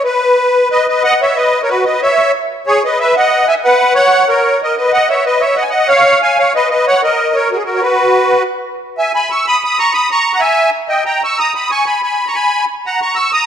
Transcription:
0.05 0.69 B4 loud
0.70 0.86 B4 medium
0.70 0.87 D#5 loud
0.89 1.03 B4 medium
0.89 1.03 D#5 medium
1.04 1.19 D#5 medium
1.04 1.21 F#5 loud
1.21 1.36 C#5 medium
1.21 1.37 E5 medium
1.36 1.59 B4 medium
1.36 1.62 D#5 medium
1.62 1.69 A#4 medium
1.62 1.70 C#5 medium
1.68 1.84 F#4 medium
1.68 1.84 B4 medium
1.84 2.00 B4 medium
1.84 2.01 D#5 medium
2.02 2.32 C#5 medium
2.02 2.32 E5 loud
2.67 2.82 G#4 medium
2.67 2.83 C#5 loud
2.85 2.98 B4 medium
2.85 2.99 D#5 medium
3.00 3.14 B4 medium
3.00 3.15 E5 loud
3.17 3.46 D#5 medium
3.17 3.48 F#5 loud
3.48 3.55 E5 medium
3.48 3.54 G#5 loud
3.64 3.93 B4 medium
3.64 3.94 F#5 loud
3.95 4.25 C#5 medium
3.95 4.28 F#5 loud
4.27 4.58 A#4 medium
4.27 4.61 C#5 medium
4.63 4.77 A#4 medium
4.63 4.75 D#5 medium
4.77 4.92 B4 medium
4.77 4.92 D#5 medium
4.92 5.08 D#5 medium
4.92 5.09 F#5 loud
5.09 5.24 C#5 medium
5.09 5.25 E5 medium
5.25 5.41 B4 medium
5.25 5.42 D#5 medium
5.40 5.55 C#5 medium
5.40 5.57 E5 medium
5.56 5.63 D#5 medium
5.56 5.64 F#5 medium
5.62 5.70 G#5 medium
5.69 5.87 D#5 medium
5.69 5.89 F#5 medium
5.88 6.19 C#5 medium
5.88 6.21 F5 loud
6.22 6.37 F5 medium
6.22 6.39 G#5 loud
6.38 6.53 C#5 medium
6.38 6.53 F5 loud
6.55 6.70 B4 medium
6.55 6.68 D#5 loud
6.70 6.85 B4 medium
6.70 6.86 D#5 medium
6.87 7.02 C#5 medium
6.87 7.02 F#5 loud
7.03 7.32 A#4 medium
7.03 7.36 D#5 medium
7.35 7.49 A#4 medium
7.35 7.50 C#5 medium
7.52 7.57 F#4 medium
7.52 7.58 A#4 medium
7.56 7.63 G#4 medium
7.65 7.81 F#4 medium
7.65 7.83 A#4 medium
7.75 7.82 C#5 medium
7.82 8.43 F#4 medium
7.82 8.43 B4 medium
8.98 9.12 E5 medium
8.98 9.12 G#5 medium
9.14 9.28 G#5 medium
9.14 9.31 B5 medium
9.30 9.44 C#6 medium
9.30 9.46 E6 medium
9.47 9.61 B5 medium
9.47 9.63 D#6 loud
9.64 9.77 B5 medium
9.64 9.79 D#6 medium
9.79 9.93 A#5 medium
9.79 9.93 C#6 loud
9.93 10.08 B5 medium
9.93 10.10 D#6 medium
10.11 10.32 A#5 medium
10.11 10.35 C#6 loud
10.34 10.41 F#5 medium
10.34 10.41 A#5 medium
10.40 10.70 E5 medium
10.40 10.70 G#5 loud
10.89 11.03 D#5 medium
10.89 11.04 G5 medium
11.06 11.21 G5 medium
11.06 11.22 A#5 medium
11.24 11.37 C#6 medium
11.24 11.39 E6 loud
11.38 11.53 A#5 medium
11.38 11.54 D#6 loud
11.55 11.69 B5 medium
11.55 11.70 D#6 medium
11.71 11.85 G#5 medium
11.71 11.87 C#6 loud
11.86 12.01 G#5 medium
11.86 12.02 B5 medium
12.02 12.25 G#5 medium
12.02 12.28 B5 medium
12.27 12.34 A#5 medium
12.27 12.35 C#6 medium
12.34 12.65 G#5 medium
12.34 12.65 B5 medium
12.86 13.00 F#5 medium
12.86 13.01 A#5 medium
13.02 13.17 A#5 medium
13.02 13.14 C#6 medium
13.16 13.31 C#6 medium
13.16 13.33 E6 loud
13.33 13.46 A#5 medium
13.33 13.46 D#6 loud

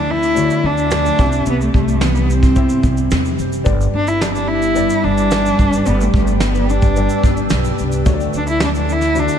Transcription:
0.00 0.47 D2 medium
0.00 0.35 D3 medium
0.00 0.35 A3 medium
0.00 0.62 A3 medium
0.00 0.12 D4 loud
0.00 0.35 D4 medium
0.00 0.10 F#4 medium
0.00 0.10 D5 loud
0.09 0.24 C4 medium
0.09 0.67 E4 loud
0.23 1.25 D4 medium
0.23 shaker soft
0.35 1.25 D3 medium
0.35 1.18 A3 medium
0.35 1.18 D4 medium
0.35 1.19 F#4 medium
0.35 0.43 C#5 medium
0.35 shaker medium
0.43 1.23 D5 medium
0.50 shaker medium
0.63 1.09 D2 medium
0.63 0.91 A3 medium
0.63 1.47 D4 loud
0.77 shaker soft
0.91 1.25 A3 medium
0.91 snare loud
0.91 shaker medium
1.06 shaker medium
1.18 1.42 C2 medium
1.18 1.44 C3 medium
1.18 2.06 C4 medium
1.18 2.07 E4 medium
1.18 2.07 G4 medium
1.18 2.08 E5 medium
1.18 kick loud
1.18 shaker soft
1.32 shaker medium
1.45 1.69 C2 medium
1.45 2.55 C3 medium
1.45 1.61 B3 medium
1.45 shaker medium
1.61 1.75 A3 medium
1.61 shaker soft
1.74 2.66 C2 medium
1.74 2.84 G3 medium
1.74 2.05 A3 medium
1.74 kick loud
1.88 shaker soft
2.00 3.10 E3 medium
2.00 2.33 B3 medium
2.00 snare loud
2.00 shaker medium
2.15 shaker soft
2.29 3.38 C4 medium
2.29 3.13 C4 medium
2.29 shaker soft
2.43 kick medium
2.43 snare soft
2.43 shaker soft
2.56 3.39 C4 medium
2.56 3.39 E4 medium
2.56 3.40 G4 medium
2.56 3.40 E5 medium
2.56 kick medium
2.56 shaker medium
2.69 shaker medium
2.83 3.06 C2 medium
2.83 3.93 G3 medium
2.83 kick medium
2.83 shaker soft
2.97 shaker soft
3.11 3.34 E2 medium
3.11 3.72 E3 medium
3.11 snare loud
3.11 shaker medium
3.25 shaker soft
3.39 3.61 F#1 medium
3.39 3.72 C4 medium
3.39 shaker soft
3.52 shaker medium
3.64 3.89 G1 loud
3.64 4.75 G2 medium
3.64 4.48 B3 medium
3.64 4.48 D4 medium
3.64 4.49 G4 medium
3.64 8.01 B4 medium
3.64 8.01 D5 medium
3.64 4.49 D5 medium
3.64 8.01 G5 medium
3.64 5.83 D6 medium
3.64 kick loud
3.64 shaker medium
3.81 shaker soft
3.93 4.86 G1 medium
3.93 5.03 B3 medium
3.93 4.10 D4 medium
4.07 4.23 E4 loud
4.07 shaker medium
4.21 5.32 G3 medium
4.21 4.33 D4 medium
4.21 snare loud
4.21 shaker medium
4.34 4.49 D4 medium
4.34 shaker soft
4.48 5.58 D4 medium
4.48 5.06 E4 loud
4.62 shaker soft
4.74 5.85 G2 medium
4.74 5.58 B3 medium
4.74 5.59 D4 medium
4.74 5.59 G4 medium
4.74 5.59 D5 medium
4.74 shaker medium
4.90 shaker medium
5.04 5.49 G1 medium
5.04 6.13 B3 medium
5.04 5.89 D4 loud
5.18 shaker medium
5.31 snare loud
5.31 shaker medium
5.46 shaker medium
5.59 5.81 F#1 medium
5.59 6.67 D4 medium
5.59 kick medium
5.59 shaker soft
5.73 shaker medium
5.85 6.09 G1 loud
5.85 6.95 G2 medium
5.85 6.69 B3 medium
5.85 6.03 B3 medium
5.85 6.69 D4 medium
5.85 6.69 G4 medium
5.85 6.69 D5 medium
5.85 8.03 E6 medium
5.85 shaker medium
6.01 6.14 A3 medium
6.01 shaker soft
6.14 7.06 G1 medium
6.14 6.40 A3 medium
6.14 7.23 B3 medium
6.14 kick loud
6.27 shaker medium
6.40 7.50 G3 medium
6.40 6.72 B3 medium
6.40 snare loud
6.40 shaker medium
6.55 shaker medium
6.68 7.80 D4 medium
6.68 7.52 D4 medium
6.68 shaker medium
6.82 kick medium
6.82 shaker soft
6.96 8.11 G2 medium
6.96 7.79 B3 medium
6.96 7.79 D4 medium
6.96 7.80 G4 medium
6.96 7.80 D5 medium
6.96 shaker medium
7.09 shaker medium
7.23 7.46 G1 medium
7.23 8.12 B3 medium
7.23 kick medium
7.23 shaker soft
7.37 shaker soft
7.50 7.73 B1 medium
7.50 8.06 G3 medium
7.50 snare loud
7.50 shaker medium
7.64 shaker medium
7.78 8.02 C2 medium
7.78 8.12 D4 medium
7.78 shaker soft
7.92 shaker medium
8.06 8.28 D2 loud
8.06 9.15 D3 medium
8.06 8.89 A3 medium
8.06 8.89 D4 medium
8.06 8.89 F#4 medium
8.06 9.39 A4 medium
8.06 8.13 C#5 medium
8.06 9.39 D5 medium
8.06 9.39 F#5 medium
8.06 9.39 D6 medium
8.06 kick loud
8.06 shaker medium
8.14 8.93 D5 loud
8.20 shaker soft
8.33 9.26 D2 medium
8.33 8.60 A3 medium
8.33 shaker medium
8.37 8.48 D4 medium
8.47 8.61 E4 loud
8.47 shaker medium
8.60 9.39 A3 medium
8.60 snare loud
8.60 shaker medium
8.64 8.70 D4 medium
8.75 8.94 D4 medium
8.75 shaker soft
8.89 9.39 D4 medium
8.89 9.21 E4 loud
8.89 shaker soft
9.01 snare soft
9.01 shaker soft
9.14 9.39 D3 medium
9.14 9.39 A3 medium
9.14 9.39 D4 medium
9.14 9.39 F#4 medium
9.14 9.39 E5 medium
9.14 shaker medium
9.19 9.39 D4 loud
9.28 shaker medium

